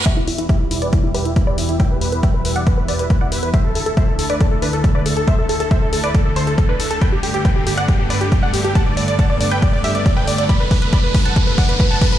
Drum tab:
HH |x-oxx-oxx-oxx-ox|x-oxx-oxx-oxx-ox|x-oxx-oxx-oxx-ox|x-oxx-oxx-oxx-ox|
BD |o---o---o---o---|o---o---o---o---|o---o---o---o---|o---o---o---o---|

HH |x-oxx-oxx-oxx-ox|x-oxx-oxx-oxx-ox|x-oxx-oxx-oxx-ox|
BD |o---o---o---o---|o---o---o---o---|o-o-o-o-o-o-o-o-|